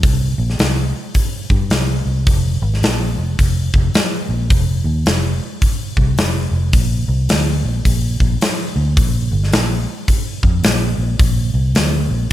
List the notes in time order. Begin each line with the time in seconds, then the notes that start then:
0.03 C2, kick, open hi-hat
0.38 A#1
0.50 snare
0.59 C2, snare, open hi-hat
1.14 kick, open hi-hat
1.50 G2, kick
1.70 C2, snare, open hi-hat
2.06 C2
2.27 F1, kick, open hi-hat
2.62 G#1
2.74 snare
2.82 A#1, snare, open hi-hat
3.17 F1
3.39 F1, kick, open hi-hat
3.74 F1, kick
3.94 muted fingered electric bass stroke, snare, open hi-hat
4.29 A#1
4.50 F1, kick, open hi-hat
4.84 D#2
5.06 F1, snare, open hi-hat
5.62 kick, open hi-hat
5.97 C2, kick
6.16 F1, snare, open hi-hat
6.51 F1
6.73 A#1, kick, open hi-hat
7.08 C2
7.29 D2, snare, open hi-hat
7.64 A#1
7.85 A#1, kick, open hi-hat
8.20 A#1, kick
8.40 muted fingered electric bass stroke, snare, open hi-hat
8.76 D2
8.97 A#1, kick, open hi-hat
9.31 G1
9.44 snare
9.52 A#1, snare, open hi-hat
10.08 kick, open hi-hat
10.43 F2, kick
10.63 A#1, snare, open hi-hat
10.98 A#1
11.19 A#1, kick, open hi-hat
11.54 C2
11.75 D2, snare, open hi-hat
12.10 A#1